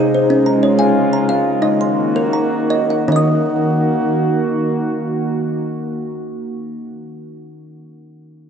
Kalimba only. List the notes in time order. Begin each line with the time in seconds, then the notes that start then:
Already playing: D#5
0.00 G#4
0.15 C5
0.30 C#4
0.46 A#5
0.63 C#5
0.79 F5 G#5
1.13 A#5
1.29 F5
1.62 D#4 D#5
1.81 C6
2.16 A#4
2.33 A#5
2.70 D#5
2.90 F#5
3.08 D#3 D#4 D#5
3.16 D#6